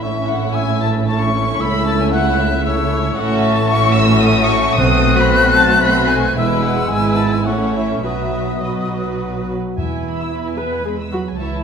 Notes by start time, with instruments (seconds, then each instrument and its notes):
Already playing: violin section E5
0.03 double bass section A1, cello section A2, viola section A3 C#4, french horn section C#4 E4, violin section E4 E5, flute C#6
0.30 violin section F#5
0.55 violin section G#5, flute E6
0.82 violin section A5
1.08 french horn section C#4 E4, violin section A5, flute C#6
1.21 violin section C#6
1.60 double bass section C#2, cello section C#3, french horn section A3 E4, violin section E5 B5, flute E6
1.87 violin section A5
2.01 violin section G#5
2.13 violin section F#5, flute F#6
2.39 violin section E5
2.66 french horn section A3 E4, violin section C#5, flute E6
3.18 double bass section A1, cello section A2, french horn section A3 E4, viola section A3 C#4, violin section F#4 E5 F#5, flute C#6
3.44 violin section A5
3.70 viola section A3 C#4, violin section F#4 E5 C#6
3.96 violin section E6
4.22 violin section D#6
4.50 violin section C#6
4.77 double bass section B1, cello section B2, timpani B2, viola section A3 C4, french horn section C4, violin section F#4 C5 D#6, flute F#6
5.18 violin section B5
5.58 violin section A5
5.84 viola section A3 C4, violin section F#4 C5 B5
6.11 violin section G#5
6.37 double bass section E1, cello section E2, french horn section G#3 B3, viola section G#3 E4, violin section E4 B4 E5, flute E6
6.65 violin section F#5
6.91 double bass section G#1, cello section G#2, viola section G#3 E4, violin section E4 B4 G#5
7.19 violin section A5
7.34 violin section G#5
7.46 double bass section A1, cello section A2, french horn section A3 C#4, viola section A3 C#4, violin section E4 C#5 F#5, flute C#6
7.76 violin section E5
8.04 double bass section B1, cello section B2, french horn section F#3 B3, viola section F#3 F#4, violin section B4 E5, flute D#6
8.63 viola section F#3 F#4, violin section B4 D#5
9.77 double bass section E2, timpani E2, cello section E3, viola section E4, violin section E5 G#5
9.92 violin section G#5
10.05 violin section B5
10.19 violin section E6
10.31 violin section B4 B5
10.45 violin section G#5
10.58 cello section B3, violin section G#4 E5, viola section B4
10.72 violin section G#5
10.85 cello section G#3, viola section G#4, violin section B4 B5
10.99 violin section E6
11.12 cello section F#3, viola section F#4, violin section B5
11.27 violin section G#5
11.39 double bass section C#2, cello section E3, viola section E4, violin section C#5 E5 A5
11.53 violin section A5